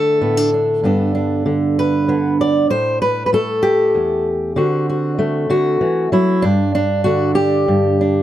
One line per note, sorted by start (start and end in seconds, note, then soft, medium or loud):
0.00 1.44 D3 medium
0.00 0.84 A3 medium
0.00 0.84 A4 medium
0.21 0.84 A2 medium
0.21 0.37 B3 soft
0.37 0.53 D4 soft
0.54 0.81 D4 soft
0.83 2.67 G2 medium
0.83 2.08 B3 soft
0.83 1.13 D4 soft
0.83 1.79 A4 soft
1.15 2.67 D4 soft
1.46 2.07 D3 medium
1.79 2.40 B4 medium
2.08 2.67 D3 medium
2.08 2.67 B3 soft
2.41 2.70 D5 medium
2.70 3.95 A2 medium
2.70 3.01 C5 loud
3.02 3.25 B4 medium
3.26 3.33 B4 medium
3.33 4.53 A3 medium
3.33 4.26 A4 medium
3.63 4.56 G4 medium
3.95 4.57 E2 medium
4.56 5.48 D3 medium
4.56 6.39 C4 soft
4.56 4.88 F#4 soft
4.90 5.49 F#4 soft
5.19 6.39 A3 medium
5.50 5.80 D3 medium
5.50 6.12 F#4 medium
5.81 6.12 E3 medium
6.12 6.43 F#3 medium
6.12 6.44 E4 medium
6.42 7.67 G2 medium
6.42 6.74 D4 medium
6.75 8.00 D4 medium
7.04 8.23 D3 medium
7.04 7.35 F#4 medium
7.35 8.23 G4 medium
7.68 8.23 G2 medium
8.01 8.23 D4 soft